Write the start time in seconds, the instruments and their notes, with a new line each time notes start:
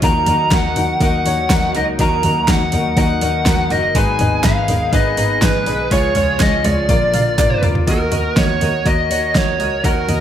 0.01 double bass D#2, analog synth pad D#3 F#3 A#3 F#4, grand piano D#3 D#4 F#4 A#4, lead electric guitar A#5, kick, open hi-hat
0.26 double bass D#2, grand piano D#4 F#4 A#4, floor tom, open hi-hat
0.51 double bass D#2, grand piano D#4 F#4 A#4, lead electric guitar F#5, kick, snare, clap, open hi-hat
0.76 double bass D#2, grand piano D#4 F#4 A#4, floor tom, open hi-hat
1.01 double bass D#2, grand piano D#4 F#4 A#4, lead electric guitar F#5, kick, open hi-hat
1.25 double bass D#2, grand piano D#4 F#4 C#5, open hi-hat
1.50 double bass D#2, grand piano D#4 F#4 A#4, kick, snare, clap, open hi-hat
1.75 double bass C#2, grand piano D#4 F#4 A#4, lead electric guitar D#5, open hi-hat
1.99 double bass D#2, grand piano D#3 D#4 F#4 A#4, lead electric guitar A#5, kick, open hi-hat
2.23 double bass D#2, grand piano D#4 F#4 A#4, floor tom, open hi-hat
2.48 double bass D#2, grand piano D#4 F#4 A#4, lead electric guitar F#5, kick, snare, clap, open hi-hat
2.72 double bass D#2, grand piano D#4 F#4 A#4, floor tom, open hi-hat
2.97 double bass D#2, grand piano D#4 F#4 A#4, lead electric guitar F#5, kick, open hi-hat
3.21 double bass D#2, grand piano D#4 F#4 A#4, open hi-hat
3.46 double bass D#2, grand piano D#4 F#4 A#4, kick, snare, clap, open hi-hat
3.70 double bass F#1, grand piano D#4 F#4 A#4, lead electric guitar D#5, open hi-hat
3.95 double bass G#1, grand piano G#2 D#4 G#4 B4, analog synth pad G#3 B3 G#4, lead electric guitar G#5, kick, open hi-hat
4.19 double bass G#1, grand piano D#4 G#4 B4, floor tom, open hi-hat
4.44 double bass G#1, grand piano D#4 G#4 B4, lead electric guitar F5, kick, snare, clap, open hi-hat
4.68 double bass G#1, grand piano D#4 G#4 A#4, floor tom, open hi-hat
4.93 double bass G#1, grand piano D#4 G#4 B4, lead electric guitar D#5, kick, open hi-hat
5.17 double bass G#1, grand piano D#4 G#4 B4, open hi-hat
5.42 double bass G#1, grand piano D#4 G#4 B4, lead electric guitar B4, kick, snare, clap, open hi-hat
5.66 double bass B1, grand piano D#4 G#4 B4, open hi-hat
5.90 double bass C#2, analog synth pad C#3 F3 F4, grand piano C#3 F4 G#4 C#5, lead electric guitar C#5, kick, open hi-hat
6.15 double bass C#2, grand piano F4 G#4 C#5, floor tom, open hi-hat
6.40 double bass C#2, grand piano F4 G#4 C#5, lead electric guitar D#5, kick, snare, clap, open hi-hat
6.64 double bass C#2, grand piano F4 G#4 C#5, lead electric guitar D5, floor tom, open hi-hat
6.88 double bass A#1, grand piano A#2 F4 A#4 D5, analog synth pad D3 A#3, kick, open hi-hat, high tom
7.14 double bass A#1, grand piano F4 A#4 F5, open hi-hat, mid tom
7.38 double bass A#1, grand piano F4 A#4 D5, kick, clap, mid tom, open hi-hat
7.50 mid tom
7.63 double bass D2, grand piano F4 A#4 D5, floor tom, open hi-hat
7.75 floor tom
7.87 double bass D#2, grand piano D#3 F#4 A#4 D#5, lead electric guitar A#4, kick, open hi-hat
8.11 double bass D#2, grand piano F#4 A#4 D#5, floor tom, open hi-hat
8.37 double bass D#2, grand piano F#4 A#4 D#5, lead electric guitar C#5, kick, snare, open hi-hat
8.61 double bass D#2, grand piano F#4 A#4 D#5, floor tom, open hi-hat
8.86 double bass D#2, grand piano F#4 A#4 D#5, lead electric guitar D#5, kick, open hi-hat
9.10 double bass D#2, grand piano F#4 A#4 C#5, open hi-hat
9.35 double bass D#2, grand piano F#4 A#4 D#5, lead electric guitar C#5, kick, snare, open hi-hat
9.59 double bass C#2, grand piano F#4 A#4 D#5, open hi-hat
9.84 double bass D#2, grand piano D#3 F#4 A#4 F#5, lead electric guitar A#4, kick, open hi-hat
10.09 double bass D#2, grand piano F#4 A#4 D#5, floor tom, open hi-hat